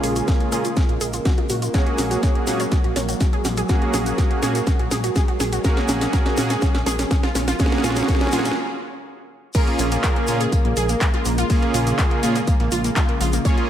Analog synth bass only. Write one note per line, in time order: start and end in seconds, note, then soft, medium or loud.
0.03 0.22 A#1 loud
0.52 0.71 A#2 medium
0.89 0.98 A#1 loud
1.01 1.20 A#1 medium
1.50 1.69 A#2 loud
1.99 2.17 A#1 loud
2.47 2.66 A#2 loud
2.84 2.93 A#1 loud
2.96 3.15 A#1 medium
3.45 3.64 A#1 loud
3.94 4.13 A#1 loud
4.43 4.61 A#2 loud
4.80 4.89 A#1 loud
4.91 5.10 A#1 loud
5.40 5.59 A#1 loud
5.89 6.08 A#1 loud
6.38 6.56 A#2 medium
6.75 6.84 A#1 loud
6.86 7.05 A#1 loud
7.35 7.54 A#1 loud
7.84 8.03 A#1 loud
8.33 8.52 A#2 loud
9.79 9.98 A#1 loud
10.28 10.47 A#2 medium
10.65 10.74 A#1 loud
10.77 10.95 A#1 medium
11.25 11.44 A#1 loud
11.74 11.93 A#1 loud
12.23 12.42 A#2 loud
12.60 12.69 A#1 loud
12.72 12.91 A#1 loud
13.20 13.39 A#1 loud